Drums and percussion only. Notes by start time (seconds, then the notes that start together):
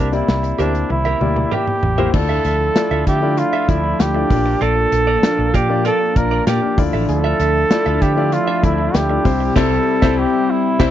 0.13 closed hi-hat
0.28 snare
0.44 closed hi-hat
0.59 closed hi-hat
0.75 closed hi-hat
0.90 high tom
1.06 high tom
1.21 mid tom
1.36 mid tom
1.52 mid tom
1.67 mid tom
1.83 floor tom
1.98 floor tom
2.14 kick, crash
2.45 closed hi-hat
2.76 snare, closed hi-hat
3.07 kick, closed hi-hat
3.38 closed hi-hat
3.69 kick, closed hi-hat
4.00 snare, closed hi-hat
4.30 kick, open hi-hat
4.61 closed hi-hat
4.92 closed hi-hat
5.23 snare, closed hi-hat
5.54 kick, closed hi-hat
5.85 closed hi-hat
6.16 kick, closed hi-hat
6.47 snare, closed hi-hat
6.78 kick, open hi-hat
7.09 closed hi-hat
7.40 closed hi-hat
7.71 snare, closed hi-hat
8.02 kick, closed hi-hat
8.32 closed hi-hat
8.64 kick, closed hi-hat
8.94 snare, closed hi-hat
9.25 kick, open hi-hat
9.56 kick, snare, crash
10.02 kick, snare
10.80 kick, snare, crash